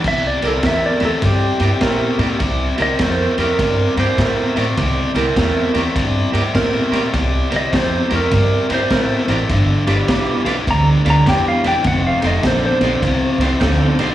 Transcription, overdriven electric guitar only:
X:1
M:4/4
L:1/8
Q:"Swing" 1/4=102
K:Cmix
V:1 name="Overdriven electric guitar" clef=bass
[C,G,] [C,G,] [C,A,] [C,A,] [C,G,] [C,G,] [C,A,] [C,A,] | [C,G,] [C,G,] [C,A,] [C,A,] [C,G,] [C,G,] [C,A,] [C,A,] | [C,G,] [C,G,] [C,A,] [C,A,] [C,G,] [C,G,] [C,A,] [C,A,] | [C,G,] [C,G,] [C,A,] [C,A,] [C,G,] [C,G,] [C,A,] [C,A,] |
[G,,D,] [G,,D,] [G,,E,] [G,,E,] [G,,D,] [G,,D,] [G,,E,] [G,,E,] | [F,,C,] [F,,C,] [F,,D,] [F,,D,] [F,,C,] [F,,C,] [F,,D,] [F,,D,] |]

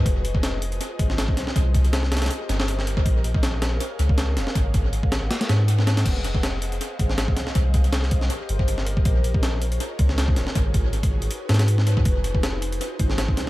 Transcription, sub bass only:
X:1
M:4/4
L:1/8
Q:"Swing 16ths" 1/4=160
K:Fm
V:1 name="Sub bass" clef=bass
F,,,4 z A,,,2 C,, | C,,4 z G,,,3 | B,,,4 z D,,2 F,,, | A,,,4 z A,,3 |
F,,,4 z A,,,2 C,, | C,,4 z G,,,3 | B,,,4 z D,,2 F,,, | A,,,4 z A,,3 |
F,,,4 z A,,,2 C,, |]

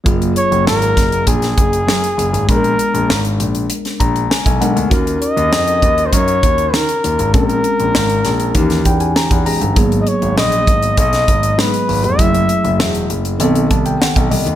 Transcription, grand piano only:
X:1
M:4/4
L:1/16
Q:1/4=99
K:F#
V:1 name="Grand piano" clef=bass
F,,,2 z F,,, G,,,2 F,,,2 A,,,2 F,,,2 F,, z F,,, G,,, | A,,,2 z A,,, G,,,2 A,,,2 z2 A,,,2 z B,,, B,,, =D,, | D,,2 z D,, E,,2 D,,2 F,,2 D,,2 D, z D,, G,,, | A,,,2 z A,,, G,,,2 A,,,2 D,,2 =E,,2 z E,, =E,,, =G,,, |
G,,,2 z G,,, A,,,2 G,,,2 B,,,2 G,,,2 G,, z G,,, E,,, | F,,,2 z F,,, =E,,,2 F,,,2 B,,,2 =C,,2 z B,,, C,, D,, |]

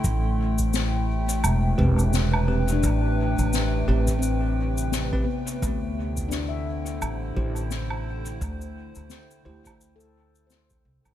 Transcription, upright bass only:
X:1
M:4/4
L:1/16
Q:"Swing 16ths" 1/4=86
K:Am
V:1 name="Upright bass" clef=bass
A,,,8 E,,,2 E,,,6 | A,,,3 A,,,3 A,,,8 z2 | D,,8 A,,,2 A,,,6 | D,,3 D,,3 D,,8 C,, A,,, |]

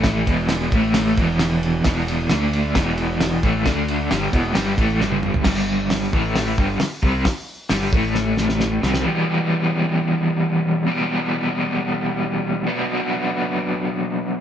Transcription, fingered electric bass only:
X:1
M:4/4
L:1/8
Q:1/4=133
K:Em
V:1 name="Fingered electric bass" clef=bass
A,,, E,,,2 A,,,2 E,,,3 | E,,,2 D,,2 E,,,3 A,,, | D,,2 G,,, E,,, G,,, A,,, G,,,2 | G,,,3 A,,,2 G,,, z C,, |
z2 G,,, A,,,4 C,, | z8 | z8 | z8 |]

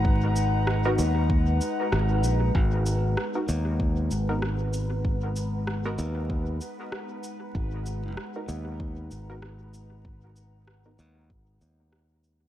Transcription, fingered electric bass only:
X:1
M:4/4
L:1/8
Q:"Swing 16ths" 1/4=96
K:G#m
V:1 name="Fingered electric bass" clef=bass
G,,,3 D,,2 z G,,, A,,, | G,,,2 z D,,2 G,,,3- | G,,,3 D,,2 z3 | G,,,2 z D,,2 G,,,3- |
G,,,3 D,, G,,, D,,3 |]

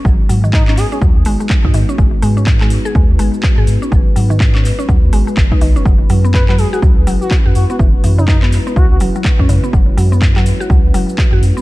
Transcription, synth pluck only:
X:1
M:4/4
L:1/16
Q:"Swing 16ths" 1/4=124
K:G#m
V:1 name="Synth pluck" clef=bass
F, z F, D, z C z C F, z G, G, z D D, C | G, z G, C z G, z G G, z G, z2 G z C | F, z F, D, z C z C F, z G, G, z D D, C | F, z F, B, z F, z F F, z F, z2 F z B, |
E, z E, C, z B, z B, E, z F, F, z C C, B, | F, z F, B, z F, z F F, z F, z2 F z B, |]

